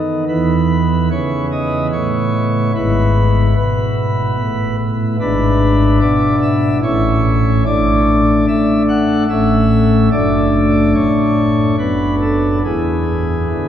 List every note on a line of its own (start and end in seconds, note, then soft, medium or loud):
0.00 0.26 D#3 medium
0.00 0.24 B3 soft
0.00 0.24 D#4 soft
0.28 1.09 E2 medium
0.28 1.09 E3 medium
0.28 2.71 B3 soft
0.28 2.71 E4 soft
0.28 1.09 B4 medium
1.11 1.91 C#3 medium
1.11 1.46 C#5 medium
1.52 1.87 D#5 medium
1.93 2.73 A2 medium
1.93 2.72 C#5 loud
2.75 3.54 G#1 medium
2.75 3.54 G#2 medium
2.75 5.16 B3 medium
2.75 5.16 E4 medium
2.75 3.54 B4 loud
3.57 4.36 B2 medium
3.57 4.76 B4 medium
4.38 5.18 A2 medium
5.20 5.99 G#1 medium
5.20 5.99 G#2 medium
5.20 6.80 D4 medium
5.20 6.80 E4 medium
5.20 5.99 B4 loud
6.01 6.81 B2 medium
6.01 6.36 D5 loud
6.42 6.77 E5 loud
6.83 7.64 A1 medium
6.83 7.64 A2 medium
6.83 7.64 C#4 medium
6.83 7.64 E4 medium
6.83 7.64 C#5 loud
7.66 8.45 A1 medium
7.66 8.45 A2 medium
7.66 8.46 A3 medium
7.66 9.24 D4 medium
7.66 8.45 D5 loud
8.48 9.26 A3 medium
8.48 8.82 E5 loud
8.89 9.23 F#5 loud
9.29 10.09 A1 medium
9.29 10.09 A2 medium
9.29 10.09 A3 medium
9.29 10.09 C#4 medium
9.29 10.09 E5 loud
10.12 10.93 F#1 medium
10.12 10.93 F#2 medium
10.12 11.75 A3 medium
10.12 11.75 D4 medium
10.12 10.93 D5 loud
10.94 11.76 A2 medium
10.94 11.76 C#5 medium
11.78 12.62 F#1 medium
11.78 12.62 F#2 medium
11.78 12.62 B3 soft
11.78 12.62 D4 soft
11.78 12.15 B4 medium
12.21 12.58 A4 medium
12.65 13.49 E2 medium
12.65 13.49 E3 medium
12.65 13.68 B3 soft
12.65 13.68 E4 soft
12.65 13.68 G#4 medium
13.52 13.68 D3 medium